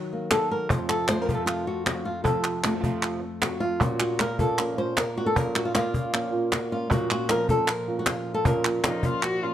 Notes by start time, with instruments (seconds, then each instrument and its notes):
Already playing: nylon-string guitar D#3 F#3 F#4
0.13 nylon-string guitar A#3
0.31 nylon-string guitar D#3 A#3 D#4 F#4 A4, cajon slap, clap
0.50 nylon-string guitar A#3 D#4 F#4 A#4
0.70 nylon-string guitar F2 C3 F3 A3 C4 F4 C5, cajon bass
0.89 nylon-string guitar A4, cajon slap, clap
1.08 nylon-string guitar F3 A3 C4 F4 C5, cajon slap, clap
1.20 nylon-string guitar C3 F3 A3 C4 F4 A#4
1.24 nylon-string guitar C3 F3 A3 C4 F4
1.29 nylon-string guitar F2 C3 F3 A3 C4 F4, cajon bass
1.34 nylon-string guitar A4
1.46 nylon-string guitar F4, cajon slap, clap
1.67 nylon-string guitar F#4, muted nylon-string guitar stroke
1.86 nylon-string guitar F3 A3 C4 F4 F#4, cajon slap, clap
2.05 nylon-string guitar F3 A3 C4 F4
2.24 nylon-string guitar F2 C3 F3 A3 C4 F4 A4, cajon bass
2.44 clap
2.64 nylon-string guitar F3 A3 C4 F4, cajon slap, clap
2.75 nylon-string guitar C3 F3 A3 C4 F4
2.79 nylon-string guitar C3 F3 A3 C4 F4
2.84 nylon-string guitar F2 C3 F3 A3 C4 F4, cajon bass
3.03 cajon slap, clap
3.22 muted nylon-string guitar stroke
3.42 nylon-string guitar F3 A3 C4 F4 F#4, cajon slap, clap
3.60 nylon-string guitar F3 A3 C4 F4, cajon slap
3.81 nylon-string guitar A#2 F3 A#3 C#4 F4 F#4, cajon bass
3.99 nylon-string guitar A#3 C#4 F4 F#4, cajon slap, clap
4.19 nylon-string guitar A#3 A#4, muted nylon-string guitar stroke, cajon slap, clap
4.39 nylon-string guitar A#3 C#4 F4 A4, cajon bass
4.58 nylon-string guitar A#2 F3 A#3 C#4 F4 A#4, clap
4.77 nylon-string guitar A#3 C#4 F4 C5
4.97 nylon-string guitar A#4, muted nylon-string guitar stroke, cajon slap, clap
5.16 nylon-string guitar A#3 C#4 F4 F#4
5.26 nylon-string guitar A4
5.35 nylon-string guitar A#2 F3 A#3 C#4 F4 A#4, cajon bass
5.55 nylon-string guitar A#3 C#4 F4 F#4, clap
5.65 nylon-string guitar F4
5.75 nylon-string guitar A#3 F4, muted nylon-string guitar stroke, cajon slap, clap
5.93 nylon-string guitar A#3 C#4 F4, cajon bass
6.12 nylon-string guitar A#2 F3 A#3 C#4 F4, clap
6.32 nylon-string guitar A#3 C#4 F4
6.51 nylon-string guitar F#4, muted nylon-string guitar stroke, cajon slap, clap
6.71 nylon-string guitar A#3 C#4 F4
6.90 nylon-string guitar A#2 F3 A#3 C#4 F4 F#4, cajon bass
7.09 nylon-string guitar A#3 C#4 F4 F#4, clap
7.29 nylon-string guitar F3 A#3 C#4 F4 A#4, cajon slap, clap
7.49 nylon-string guitar A#3 C#4 F4 A4, cajon bass
7.68 nylon-string guitar A#4, muted nylon-string guitar stroke, cajon slap, clap
7.88 nylon-string guitar A#3 C#4 F4
7.99 nylon-string guitar F#4
8.06 nylon-string guitar F4, cajon slap, clap
8.34 nylon-string guitar A4
8.45 nylon-string guitar A#2 F3 A#3 C#4 F4 A#4, cajon bass
8.65 nylon-string guitar A#3 C#4 F4, clap
8.84 nylon-string guitar F3 A#3 C#4 F4, cello D#4, cajon slap, clap
9.03 nylon-string guitar A#3 C#4 F4, cello F4, cajon bass
9.23 cello F#4, muted nylon-string guitar stroke, cajon slap, clap
9.42 nylon-string guitar A#3 C#4 F4, cello F4